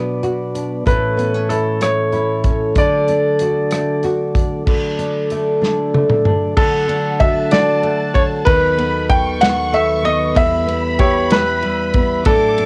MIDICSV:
0, 0, Header, 1, 6, 480
1, 0, Start_track
1, 0, Key_signature, 2, "major"
1, 0, Tempo, 632911
1, 659, Time_signature, 6, 3, 24, 8
1, 9599, End_track
2, 0, Start_track
2, 0, Title_t, "Violin section"
2, 0, Program_c, 0, 48
2, 4978, Note_on_c, 0, 78, 77
2, 5429, Note_off_c, 0, 78, 0
2, 5465, Note_on_c, 0, 81, 96
2, 6423, Note_off_c, 0, 81, 0
2, 6423, Note_on_c, 0, 83, 94
2, 6902, Note_off_c, 0, 83, 0
2, 6903, Note_on_c, 0, 85, 112
2, 7860, Note_on_c, 0, 83, 114
2, 7862, Note_off_c, 0, 85, 0
2, 9270, Note_off_c, 0, 83, 0
2, 9310, Note_on_c, 0, 86, 116
2, 9599, Note_off_c, 0, 86, 0
2, 9599, End_track
3, 0, Start_track
3, 0, Title_t, "Grand piano"
3, 0, Program_c, 1, 0
3, 657, Note_on_c, 1, 71, 75
3, 1132, Note_on_c, 1, 69, 71
3, 1153, Note_off_c, 1, 71, 0
3, 1380, Note_on_c, 1, 73, 87
3, 1384, Note_off_c, 1, 69, 0
3, 2110, Note_on_c, 1, 74, 85
3, 2122, Note_off_c, 1, 73, 0
3, 3036, Note_off_c, 1, 74, 0
3, 4981, Note_on_c, 1, 69, 89
3, 5460, Note_on_c, 1, 76, 91
3, 5476, Note_off_c, 1, 69, 0
3, 5700, Note_on_c, 1, 74, 91
3, 5708, Note_off_c, 1, 76, 0
3, 6175, Note_on_c, 1, 73, 92
3, 6195, Note_off_c, 1, 74, 0
3, 6230, Note_off_c, 1, 73, 0
3, 6409, Note_on_c, 1, 71, 102
3, 6897, Note_on_c, 1, 79, 107
3, 6909, Note_off_c, 1, 71, 0
3, 7136, Note_on_c, 1, 78, 105
3, 7146, Note_off_c, 1, 79, 0
3, 7385, Note_off_c, 1, 78, 0
3, 7387, Note_on_c, 1, 76, 98
3, 7620, Note_on_c, 1, 75, 98
3, 7631, Note_off_c, 1, 76, 0
3, 7865, Note_on_c, 1, 76, 107
3, 7867, Note_off_c, 1, 75, 0
3, 8339, Note_on_c, 1, 73, 93
3, 8357, Note_off_c, 1, 76, 0
3, 8583, Note_on_c, 1, 71, 96
3, 8587, Note_off_c, 1, 73, 0
3, 9297, Note_on_c, 1, 69, 93
3, 9323, Note_off_c, 1, 71, 0
3, 9599, Note_off_c, 1, 69, 0
3, 9599, End_track
4, 0, Start_track
4, 0, Title_t, "Tonewheel organ"
4, 0, Program_c, 2, 16
4, 0, Note_on_c, 2, 54, 55
4, 0, Note_on_c, 2, 59, 51
4, 0, Note_on_c, 2, 62, 50
4, 0, Note_on_c, 2, 71, 53
4, 0, Note_on_c, 2, 74, 58
4, 639, Note_off_c, 2, 54, 0
4, 639, Note_off_c, 2, 59, 0
4, 639, Note_off_c, 2, 62, 0
4, 639, Note_off_c, 2, 74, 0
4, 640, Note_off_c, 2, 71, 0
4, 652, Note_on_c, 2, 69, 52
4, 657, Note_on_c, 2, 61, 52
4, 657, Note_on_c, 2, 73, 64
4, 658, Note_on_c, 2, 52, 56
4, 660, Note_on_c, 2, 57, 52
4, 2085, Note_off_c, 2, 61, 0
4, 2085, Note_off_c, 2, 73, 0
4, 2086, Note_off_c, 2, 52, 0
4, 2088, Note_on_c, 2, 54, 58
4, 2091, Note_on_c, 2, 62, 56
4, 2094, Note_on_c, 2, 74, 61
4, 3510, Note_off_c, 2, 69, 0
4, 3513, Note_off_c, 2, 57, 0
4, 3521, Note_off_c, 2, 54, 0
4, 3523, Note_off_c, 2, 62, 0
4, 3524, Note_off_c, 2, 74, 0
4, 3532, Note_on_c, 2, 69, 56
4, 3534, Note_on_c, 2, 54, 57
4, 3535, Note_on_c, 2, 74, 63
4, 3540, Note_on_c, 2, 57, 54
4, 3543, Note_on_c, 2, 62, 53
4, 4962, Note_off_c, 2, 69, 0
4, 4963, Note_off_c, 2, 54, 0
4, 4964, Note_off_c, 2, 74, 0
4, 4966, Note_off_c, 2, 57, 0
4, 4968, Note_off_c, 2, 62, 0
4, 4987, Note_on_c, 2, 69, 61
4, 4990, Note_on_c, 2, 62, 55
4, 4991, Note_on_c, 2, 57, 57
4, 4992, Note_on_c, 2, 78, 70
4, 4995, Note_on_c, 2, 54, 62
4, 6407, Note_off_c, 2, 54, 0
4, 6411, Note_off_c, 2, 57, 0
4, 6411, Note_off_c, 2, 62, 0
4, 6411, Note_on_c, 2, 59, 57
4, 6412, Note_off_c, 2, 78, 0
4, 6413, Note_on_c, 2, 39, 67
4, 6414, Note_on_c, 2, 71, 70
4, 6415, Note_on_c, 2, 51, 57
4, 6416, Note_on_c, 2, 54, 59
4, 7834, Note_off_c, 2, 69, 0
4, 7842, Note_off_c, 2, 39, 0
4, 7843, Note_off_c, 2, 51, 0
4, 7843, Note_off_c, 2, 54, 0
4, 7843, Note_off_c, 2, 71, 0
4, 7852, Note_on_c, 2, 55, 67
4, 7858, Note_on_c, 2, 64, 61
4, 7858, Note_on_c, 2, 71, 65
4, 7862, Note_on_c, 2, 76, 74
4, 9267, Note_off_c, 2, 59, 0
4, 9282, Note_off_c, 2, 55, 0
4, 9285, Note_off_c, 2, 64, 0
4, 9285, Note_off_c, 2, 71, 0
4, 9287, Note_off_c, 2, 76, 0
4, 9298, Note_on_c, 2, 45, 66
4, 9299, Note_on_c, 2, 62, 63
4, 9300, Note_on_c, 2, 57, 58
4, 9301, Note_on_c, 2, 74, 72
4, 9302, Note_on_c, 2, 69, 57
4, 9304, Note_on_c, 2, 54, 62
4, 9599, Note_off_c, 2, 45, 0
4, 9599, Note_off_c, 2, 54, 0
4, 9599, Note_off_c, 2, 57, 0
4, 9599, Note_off_c, 2, 62, 0
4, 9599, Note_off_c, 2, 69, 0
4, 9599, Note_off_c, 2, 74, 0
4, 9599, End_track
5, 0, Start_track
5, 0, Title_t, "Nylon-string guitar"
5, 0, Program_c, 3, 24
5, 0, Note_on_c, 3, 47, 70
5, 0, Note_on_c, 3, 59, 50
5, 0, Note_on_c, 3, 62, 53
5, 0, Note_on_c, 3, 66, 59
5, 165, Note_off_c, 3, 66, 0
5, 174, Note_on_c, 3, 66, 59
5, 404, Note_off_c, 3, 62, 0
5, 413, Note_on_c, 3, 62, 46
5, 645, Note_off_c, 3, 47, 0
5, 648, Note_on_c, 3, 45, 72
5, 703, Note_off_c, 3, 59, 0
5, 704, Note_off_c, 3, 62, 0
5, 705, Note_off_c, 3, 66, 0
5, 888, Note_on_c, 3, 59, 58
5, 1017, Note_off_c, 3, 59, 0
5, 1017, Note_on_c, 3, 61, 47
5, 1137, Note_on_c, 3, 64, 59
5, 1374, Note_on_c, 3, 57, 53
5, 1603, Note_off_c, 3, 64, 0
5, 1612, Note_on_c, 3, 64, 60
5, 1855, Note_off_c, 3, 61, 0
5, 1864, Note_on_c, 3, 61, 50
5, 2095, Note_off_c, 3, 45, 0
5, 2102, Note_on_c, 3, 50, 72
5, 2145, Note_off_c, 3, 64, 0
5, 2151, Note_off_c, 3, 61, 0
5, 2344, Note_on_c, 3, 62, 58
5, 2587, Note_on_c, 3, 66, 65
5, 2817, Note_off_c, 3, 57, 0
5, 2820, Note_on_c, 3, 57, 57
5, 3061, Note_off_c, 3, 66, 0
5, 3064, Note_on_c, 3, 66, 62
5, 3306, Note_off_c, 3, 62, 0
5, 3309, Note_on_c, 3, 62, 50
5, 3544, Note_off_c, 3, 50, 0
5, 3547, Note_on_c, 3, 50, 70
5, 3779, Note_off_c, 3, 62, 0
5, 3782, Note_on_c, 3, 62, 55
5, 4027, Note_off_c, 3, 57, 0
5, 4030, Note_on_c, 3, 57, 59
5, 4255, Note_off_c, 3, 62, 0
5, 4258, Note_on_c, 3, 62, 57
5, 4504, Note_off_c, 3, 57, 0
5, 4507, Note_on_c, 3, 57, 58
5, 4742, Note_off_c, 3, 62, 0
5, 4745, Note_on_c, 3, 62, 51
5, 4971, Note_off_c, 3, 50, 0
5, 4980, Note_on_c, 3, 50, 84
5, 5031, Note_off_c, 3, 62, 0
5, 5217, Note_on_c, 3, 62, 61
5, 5462, Note_off_c, 3, 66, 0
5, 5465, Note_on_c, 3, 66, 67
5, 5689, Note_off_c, 3, 62, 0
5, 5698, Note_on_c, 3, 62, 59
5, 5938, Note_off_c, 3, 57, 0
5, 5941, Note_on_c, 3, 57, 63
5, 6174, Note_off_c, 3, 62, 0
5, 6183, Note_on_c, 3, 62, 56
5, 6414, Note_off_c, 3, 50, 0
5, 6417, Note_on_c, 3, 51, 80
5, 6469, Note_off_c, 3, 57, 0
5, 6470, Note_off_c, 3, 62, 0
5, 6471, Note_off_c, 3, 66, 0
5, 6654, Note_on_c, 3, 59, 64
5, 7128, Note_off_c, 3, 59, 0
5, 7131, Note_on_c, 3, 59, 62
5, 7374, Note_on_c, 3, 57, 62
5, 7602, Note_off_c, 3, 59, 0
5, 7605, Note_on_c, 3, 59, 60
5, 7849, Note_on_c, 3, 40, 85
5, 7859, Note_off_c, 3, 51, 0
5, 7901, Note_off_c, 3, 59, 0
5, 7905, Note_off_c, 3, 57, 0
5, 8088, Note_on_c, 3, 59, 63
5, 8334, Note_on_c, 3, 67, 74
5, 8571, Note_off_c, 3, 59, 0
5, 8580, Note_on_c, 3, 59, 61
5, 8820, Note_on_c, 3, 55, 67
5, 9050, Note_off_c, 3, 59, 0
5, 9060, Note_on_c, 3, 59, 55
5, 9295, Note_off_c, 3, 40, 0
5, 9301, Note_on_c, 3, 45, 88
5, 9345, Note_off_c, 3, 67, 0
5, 9348, Note_off_c, 3, 55, 0
5, 9348, Note_off_c, 3, 59, 0
5, 9544, Note_on_c, 3, 62, 61
5, 9599, Note_off_c, 3, 45, 0
5, 9599, Note_off_c, 3, 62, 0
5, 9599, End_track
6, 0, Start_track
6, 0, Title_t, "Drums"
6, 174, Note_on_c, 9, 42, 38
6, 250, Note_off_c, 9, 42, 0
6, 418, Note_on_c, 9, 42, 68
6, 494, Note_off_c, 9, 42, 0
6, 656, Note_on_c, 9, 36, 97
6, 658, Note_on_c, 9, 42, 75
6, 732, Note_off_c, 9, 36, 0
6, 734, Note_off_c, 9, 42, 0
6, 900, Note_on_c, 9, 42, 47
6, 976, Note_off_c, 9, 42, 0
6, 1138, Note_on_c, 9, 42, 72
6, 1214, Note_off_c, 9, 42, 0
6, 1373, Note_on_c, 9, 42, 73
6, 1387, Note_on_c, 9, 37, 91
6, 1449, Note_off_c, 9, 42, 0
6, 1462, Note_off_c, 9, 37, 0
6, 1612, Note_on_c, 9, 42, 38
6, 1688, Note_off_c, 9, 42, 0
6, 1851, Note_on_c, 9, 42, 64
6, 1854, Note_on_c, 9, 36, 82
6, 1927, Note_off_c, 9, 42, 0
6, 1930, Note_off_c, 9, 36, 0
6, 2091, Note_on_c, 9, 42, 76
6, 2094, Note_on_c, 9, 36, 103
6, 2167, Note_off_c, 9, 42, 0
6, 2170, Note_off_c, 9, 36, 0
6, 2336, Note_on_c, 9, 42, 49
6, 2412, Note_off_c, 9, 42, 0
6, 2572, Note_on_c, 9, 42, 73
6, 2648, Note_off_c, 9, 42, 0
6, 2812, Note_on_c, 9, 42, 75
6, 2825, Note_on_c, 9, 37, 89
6, 2888, Note_off_c, 9, 42, 0
6, 2901, Note_off_c, 9, 37, 0
6, 3056, Note_on_c, 9, 42, 41
6, 3132, Note_off_c, 9, 42, 0
6, 3300, Note_on_c, 9, 36, 89
6, 3303, Note_on_c, 9, 42, 70
6, 3375, Note_off_c, 9, 36, 0
6, 3379, Note_off_c, 9, 42, 0
6, 3540, Note_on_c, 9, 49, 81
6, 3542, Note_on_c, 9, 36, 101
6, 3616, Note_off_c, 9, 49, 0
6, 3617, Note_off_c, 9, 36, 0
6, 3784, Note_on_c, 9, 42, 47
6, 3860, Note_off_c, 9, 42, 0
6, 4022, Note_on_c, 9, 42, 56
6, 4098, Note_off_c, 9, 42, 0
6, 4272, Note_on_c, 9, 38, 49
6, 4347, Note_off_c, 9, 38, 0
6, 4507, Note_on_c, 9, 48, 69
6, 4583, Note_off_c, 9, 48, 0
6, 4622, Note_on_c, 9, 47, 70
6, 4698, Note_off_c, 9, 47, 0
6, 4741, Note_on_c, 9, 45, 85
6, 4817, Note_off_c, 9, 45, 0
6, 4981, Note_on_c, 9, 49, 91
6, 4983, Note_on_c, 9, 36, 108
6, 5057, Note_off_c, 9, 49, 0
6, 5059, Note_off_c, 9, 36, 0
6, 5224, Note_on_c, 9, 51, 42
6, 5300, Note_off_c, 9, 51, 0
6, 5458, Note_on_c, 9, 51, 50
6, 5463, Note_on_c, 9, 36, 97
6, 5534, Note_off_c, 9, 51, 0
6, 5539, Note_off_c, 9, 36, 0
6, 5695, Note_on_c, 9, 51, 66
6, 5709, Note_on_c, 9, 38, 98
6, 5771, Note_off_c, 9, 51, 0
6, 5784, Note_off_c, 9, 38, 0
6, 5939, Note_on_c, 9, 51, 36
6, 6015, Note_off_c, 9, 51, 0
6, 6182, Note_on_c, 9, 36, 92
6, 6183, Note_on_c, 9, 51, 46
6, 6257, Note_off_c, 9, 36, 0
6, 6258, Note_off_c, 9, 51, 0
6, 6418, Note_on_c, 9, 51, 76
6, 6421, Note_on_c, 9, 36, 124
6, 6494, Note_off_c, 9, 51, 0
6, 6497, Note_off_c, 9, 36, 0
6, 6661, Note_on_c, 9, 51, 46
6, 6737, Note_off_c, 9, 51, 0
6, 6897, Note_on_c, 9, 51, 50
6, 6900, Note_on_c, 9, 36, 98
6, 6972, Note_off_c, 9, 51, 0
6, 6976, Note_off_c, 9, 36, 0
6, 7138, Note_on_c, 9, 51, 74
6, 7152, Note_on_c, 9, 38, 107
6, 7214, Note_off_c, 9, 51, 0
6, 7227, Note_off_c, 9, 38, 0
6, 7383, Note_on_c, 9, 51, 36
6, 7459, Note_off_c, 9, 51, 0
6, 7622, Note_on_c, 9, 51, 46
6, 7697, Note_off_c, 9, 51, 0
6, 7860, Note_on_c, 9, 36, 111
6, 7860, Note_on_c, 9, 51, 74
6, 7936, Note_off_c, 9, 36, 0
6, 7936, Note_off_c, 9, 51, 0
6, 8103, Note_on_c, 9, 51, 45
6, 8179, Note_off_c, 9, 51, 0
6, 8334, Note_on_c, 9, 51, 51
6, 8339, Note_on_c, 9, 36, 98
6, 8410, Note_off_c, 9, 51, 0
6, 8415, Note_off_c, 9, 36, 0
6, 8573, Note_on_c, 9, 51, 68
6, 8586, Note_on_c, 9, 38, 108
6, 8649, Note_off_c, 9, 51, 0
6, 8662, Note_off_c, 9, 38, 0
6, 8815, Note_on_c, 9, 51, 35
6, 8891, Note_off_c, 9, 51, 0
6, 9052, Note_on_c, 9, 51, 47
6, 9058, Note_on_c, 9, 36, 98
6, 9128, Note_off_c, 9, 51, 0
6, 9134, Note_off_c, 9, 36, 0
6, 9292, Note_on_c, 9, 51, 78
6, 9299, Note_on_c, 9, 36, 118
6, 9368, Note_off_c, 9, 51, 0
6, 9375, Note_off_c, 9, 36, 0
6, 9540, Note_on_c, 9, 51, 46
6, 9599, Note_off_c, 9, 51, 0
6, 9599, End_track
0, 0, End_of_file